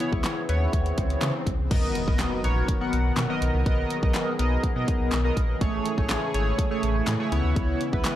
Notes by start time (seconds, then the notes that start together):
Already playing: C#3 E3 B3 E4 G#4, swell
0.00 B3 E4 C#5, closed hi-hat
0.13 C#2, kick
0.24 snare, clap, closed hi-hat
0.49 D#2 B3 E4 C#5, closed hi-hat
0.73 D#2, kick, closed hi-hat
0.86 closed hi-hat
0.98 C#2, kick, closed hi-hat
1.10 closed hi-hat
1.21 C#3, snare, clap, closed hi-hat
1.47 C#2, kick, closed hi-hat
1.59 C2
1.71 B1 D#3 F#3 B3 F#4 A#4 D#5, kick, closed hi-hat, crash, impact
1.95 closed hi-hat
2.07 B1 B3 A#4 D#5, kick
2.19 snare, clap, closed hi-hat
2.44 A#1 B3 A#4 C#5, closed hi-hat
2.68 kick, closed hi-hat
2.81 B3 A#4 F#5
2.93 B1, closed hi-hat
3.17 B2, snare, clap, closed hi-hat
3.29 B3 A#4 D#5
3.42 B1, closed hi-hat
3.54 C2
3.66 B1 B3 G#4 A#4 D#5, kick, closed hi-hat
3.90 closed hi-hat
4.02 B1 B3 A#4 D#5, kick
4.14 snare, clap, closed hi-hat
4.39 B1 B3 A#4 D#5, closed hi-hat
4.63 B2, kick, closed hi-hat
4.76 B2 B3 A#4 D#5
4.88 kick, closed hi-hat
5.00 B1
5.12 B1, snare, clap, closed hi-hat
5.24 B3 A#4 D#5
5.37 A#1, kick, closed hi-hat
5.61 A1 C#3 E3 A3 E4 G#4 C#5, kick, closed hi-hat
5.86 closed hi-hat
5.97 A1 A3 G#4 C#5, kick
6.09 snare, clap, closed hi-hat
6.34 G#1 A3 G#4 C#5, closed hi-hat
6.59 kick, closed hi-hat
6.71 A3 G#4 C#5
6.83 A1, closed hi-hat
7.07 A2, snare, clap, closed hi-hat
7.19 A3 G#4 C#5
7.32 C#2 G#3 B3 E4 C#5, closed hi-hat
7.44 D2
7.56 C#2, kick, closed hi-hat
7.81 closed hi-hat
7.93 C#2 B3 E4 B4, kick
8.04 snare, clap, closed hi-hat